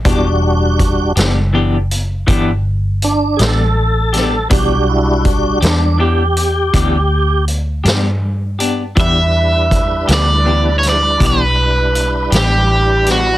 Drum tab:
HH |x-xx-xx-xx-x|x-xx-xx-xx-x|x-xx-xx-xx-x|
SD |---o-----o-o|---o-----o--|---o-o---o-o|
BD |o-o---o-----|o-o---o-----|o-o---o-----|